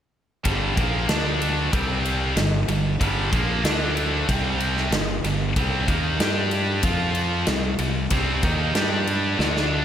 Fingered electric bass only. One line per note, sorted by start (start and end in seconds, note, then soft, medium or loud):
0.46 0.75 G1 medium
0.78 1.07 A#1 medium
1.08 1.69 D2 medium
1.73 2.33 C2 medium
2.36 2.66 G1 medium
2.68 2.98 G1 medium
3.01 3.31 G1 medium
3.33 3.63 A#1 loud
3.64 4.24 D2 loud
4.29 4.89 C2 medium
4.91 5.21 G1 medium
5.23 5.54 G1 medium
5.57 5.86 C2 medium
5.88 6.18 D#2 medium
6.20 6.80 G2 loud
6.84 7.44 F2 medium
7.47 7.77 C2 medium
7.79 8.09 C2 medium
8.11 8.41 C2 medium
8.43 8.73 D#2 loud
8.74 9.34 G2 loud
9.39 9.85 D2 medium